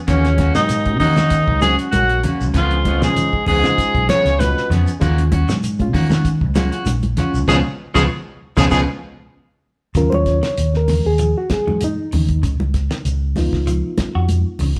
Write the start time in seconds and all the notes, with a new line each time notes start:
0.07 C#2 D#2 D#3 G#3 A#3 C#4 F#4, kick, snare, closed hi-hat, low conga, shekere
0.25 snare, closed hi-hat
0.38 A#3 C#4 F#4, kick, snare, closed hi-hat, high conga, shekere
0.55 D#2 G#2 F#3 D#4, snare, closed hi-hat, shekere
0.69 snare, closed hi-hat, shekere
0.86 G#3 C#4 F#4, kick, closed hi-hat
0.99 D#2 D#3 A#3 C#4 D#4 F#4, kick, snare, open hi-hat, low conga, shekere
1.16 D#3 C#4 F#4, snare, closed hi-hat, high conga, shekere
1.30 kick, closed hi-hat, shekere
1.48 C#2, kick
1.60 G#2 F#3 G#3 C#4 F#4 G#4, snare, closed hi-hat, high conga, shekere
1.79 C#4 F#4, closed hi-hat, shekere
1.91 A#1 F#2 D#3 F#4, closed hi-hat, high conga, shekere
1.95 F#4
2.10 closed hi-hat
2.23 C#3 G#3 A#3 C#4 F#4, muted fingered electric bass stroke, closed hi-hat, low conga, shekere
2.41 C#2, shekere
2.54 C#2 F2 C#3 F3 B3 C#4 F4 G#4, kick, snare, closed hi-hat, low conga, shekere
2.59 F4
2.71 closed hi-hat
2.85 F3 B3 C#4 G#4, kick, closed hi-hat, high conga, shekere
3.01 G#2 C#3 F3 G#3 C#4 F4 G#4, snare, closed hi-hat, shekere
3.06 G#4
3.16 closed hi-hat, low conga, shekere
3.33 kick
3.46 C#2 G#2 F3 B3 C#4 G#4, kick, open hi-hat, low conga, shekere
3.51 G#4
3.63 C#3 G#3 C#4 F4, snare, closed hi-hat, high conga, shekere
3.78 muted fingered electric bass stroke, kick, closed hi-hat, shekere
3.95 B1, kick, closed hi-hat
4.09 C#3 F3 B3 C#4 G#4 C#5, snare, closed hi-hat, high conga, shekere
4.25 C#2, snare, closed hi-hat, shekere
4.38 B2 D#3 G#3 C#4 F4 B4, snare, closed hi-hat, high conga, shekere
4.57 snare
4.70 F2 C#3 F3 B3 C#4 G#4, snare, closed hi-hat, low conga, shekere
4.87 closed hi-hat, shekere
5.00 D#2 D#3 G#3 A#3 C#4 F4 F#4, kick, closed hi-hat, low conga, shekere
5.18 closed hi-hat
5.32 C#4 F#4, muted clean electric guitar stroke, kick, closed hi-hat, high conga, shekere
5.49 G#2 F#3, snare, closed hi-hat, shekere
5.63 closed hi-hat, shekere
5.79 G#3 C#4 F4, kick, closed hi-hat, high conga
5.93 D#3 A#3 C#4 F#4, kick, snare, open hi-hat, low conga, shekere
6.09 D#3 C#4 F#4, snare, closed hi-hat, high conga, shekere
6.24 kick, closed hi-hat, shekere
6.41 C#2, kick
6.55 F#3 G#3 A#3 C#4 F4 F#4, snare, closed hi-hat, high conga, shekere
6.72 C#4 F#4, closed hi-hat, shekere
6.86 A#1 D#3, closed hi-hat, high conga, shekere
7.03 closed hi-hat, high conga
7.17 C#3 G#3 C#4 F4 F#4, muted clean electric guitar stroke, muted fingered electric bass stroke, snare, closed hi-hat, high conga, low conga, shekere
7.34 C#2, shekere
7.48 C#2 G#2 B2 C#3 F3 B3 C#4 F4 G#4, kick, snare, high conga, shekere
7.94 C#2 G#2 B2 C#3 F3 B3 C#4 F4 G#4, kick, snare, high conga, shekere
8.57 C#2 G#2 B2 C#3 F3 B3 C#4 F4 G#4, kick, snare, high conga, shekere
8.70 C#2 G#2 B2 C#3 F3 B3 C#4 F4 G#4, kick, snare, high conga, shekere
9.95 D#2 C#3 F#3 C#4 F4 A#4, kick, snare, closed hi-hat, shekere
10.10 D#2 C5, high conga
10.14 C#5
10.26 kick, snare, closed hi-hat, shekere
10.43 D#3, snare, closed hi-hat
10.58 D#2, closed hi-hat, shekere
10.74 A#4, snare
10.88 C#3, snare, open hi-hat, high conga, low conga, shekere
11.05 D#2 G#4
11.18 F3, closed hi-hat, shekere
11.38 F#4
11.50 G#4, kick, snare, closed hi-hat, high conga, shekere
11.67 G#2 F#3, low conga
11.81 D#4, closed hi-hat, high conga, shekere
12.12 D#2 C#3, open hi-hat, high conga, low conga, shekere
12.29 kick, closed hi-hat
12.43 C#2 C#3, kick, closed hi-hat, shekere
12.60 C#2, high conga
12.74 kick, snare, closed hi-hat, shekere
12.91 D#3, snare, closed hi-hat
13.05 C#2, closed hi-hat, shekere
13.36 B3 D#4 F4, snare, open hi-hat, high conga, low conga, shekere
13.53 C#2, kick, snare
13.67 F3, closed hi-hat, shekere
13.98 kick, snare, closed hi-hat, high conga, shekere
14.15 F2 F#4
14.28 closed hi-hat, high conga, shekere
14.59 C#2 C#3, open hi-hat, low conga, shekere
14.76 closed hi-hat